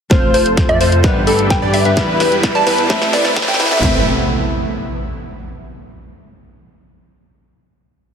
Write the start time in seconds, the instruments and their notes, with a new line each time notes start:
0.10 detuned saw bass F1, analog synth pad C3 F3 A3 F4, steel-string acoustic guitar A3 C4 F4 C5, supersaw synth F4 A4 C5, digital synth lead C5, kick, snare, closed hi-hat, riser
0.34 detuned saw bass F1, supersaw synth F4 A4 C5, digital synth lead C5, open hi-hat
0.46 closed hi-hat
0.57 kick, snare, closed hi-hat
0.69 detuned saw bass F2, supersaw synth F4 A4 D5, digital synth lead D5, synth pluck E5, closed hi-hat
0.81 detuned saw bass F2, supersaw synth F4 A4 C5, digital synth lead C5, open hi-hat
0.92 closed hi-hat
1.03 detuned saw bass G1, steel-string acoustic guitar G2 G3 B3 D4 B4, analog synth pad D3 G3 G4 B4, digital synth lead B4, kick, snare, closed hi-hat
1.27 detuned saw bass G1, supersaw synth D4 G4 A4, digital synth lead A4, open hi-hat
1.39 closed hi-hat
1.50 synth pluck G5, kick, snare, closed hi-hat
1.62 detuned saw bass G2, supersaw synth D4 G4 D5, digital synth lead D5
1.74 synth pluck E5, open hi-hat
1.85 detuned saw bass G2, supersaw synth D4 G4 B4, digital synth lead B4, synth pluck E5, closed hi-hat
1.96 detuned saw bass E1, analog synth pad E3 G3, steel-string acoustic guitar G3 B3 E4 B4, supersaw synth E4 G4 B4, digital synth lead B4, kick, snare, closed hi-hat
2.20 detuned saw bass E1, supersaw synth E4 G4 B4, digital synth lead B4, snare, open hi-hat
2.32 closed hi-hat
2.43 kick, snare, closed hi-hat
2.55 detuned saw bass E1, supersaw synth E4 G4 D5, digital synth lead D5, synth pluck A5, closed hi-hat
2.67 detuned saw bass E2, supersaw synth E4 G4 B4, digital synth lead B4, snare, open hi-hat
2.78 closed hi-hat
2.89 detuned saw bass A1, steel-string acoustic guitar A2 A3 C4 E4 B4, analog synth pad C3 A3 E4, supersaw synth C4 E4 A4 E5, digital synth lead E5, kick, snare, closed hi-hat
3.02 snare
3.13 detuned saw bass A1, supersaw synth C4 E4 A4 B4 D5, digital synth lead D5, snare, open hi-hat
3.25 snare, closed hi-hat
3.36 kick, snare, closed hi-hat
3.42 snare
3.48 detuned saw bass A1, supersaw synth C4 E4 A4 B4 G5, digital synth lead G5, snare
3.54 snare
3.60 snare, open hi-hat
3.65 snare
3.71 detuned saw bass A1, supersaw synth C4 E4 A4 B4 E5, digital synth lead E5, snare, closed hi-hat
3.77 snare
3.81 detuned saw bass A1, analog synth pad C3 A3 B3 E4, steel-string acoustic guitar A3 C4 E4 B4, supersaw synth C4 E4 B4 E5, digital synth lead E5, kick, snare, clap, impact